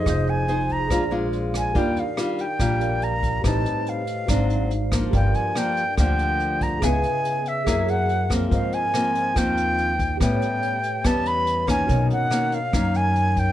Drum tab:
HH |xxxxxxxx|xxxxxxxx|xxxxxxxx|xxxxxxxx|
SD |r---r--r|--r-r---|r---r--r|--r-r---|
BD |o--oo--o|o---o--o|o---o--o|o---o--o|

HH |xxxxxxxx|xxxxxxxx|xxxxxxxx|xxxxxxxx|
SD |r---r--r|--r-r---|r---r--r|--r-r---|
BD |o---o--o|o---o--o|o---o--o|o---o--o|